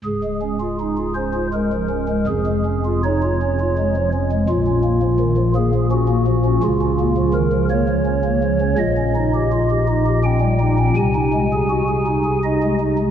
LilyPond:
<<
  \new Staff \with { instrumentName = "Pipe organ" } { \time 3/4 \key des \major \tempo 4 = 83 << { aes'4. c''8 bes'4 | aes'4 des''4. r8 | f'4. aes'8 ges'4 | f'4 bes'8 des''4. |
ees''2 g''4 | aes''2 ees''8 r8 | } \\ { des,16 aes16 des'16 f'16 ees'16 f'16 des'16 f'16 aes16 f16 des'16 aes16 | f,16 aes16 des'16 f'16 ees'16 f'16 des'16 f'16 aes16 f16 des'16 aes16 | bes,16 des'16 bes16 f16 ees16 f16 bes16 f16 des'16 bes16 f16 des'16 | des16 des'16 bes16 f16 ees16 f16 bes16 f16 des'16 bes16 f16 des'16 |
bes,16 des'16 ees'16 g'16 f'16 g'16 ees'16 g'16 des'16 g16 ees'16 des'16 | c16 ees'16 aes16 aes'16 ges'16 aes'16 ees'16 aes'16 ees'16 aes16 ees'16 aes16 | } >> }
  \new Staff \with { instrumentName = "Pipe organ" } { \clef bass \time 3/4 \key des \major des,,2. | f,,2. | bes,,2. | des,2. |
bes,,2. | c,2. | }
>>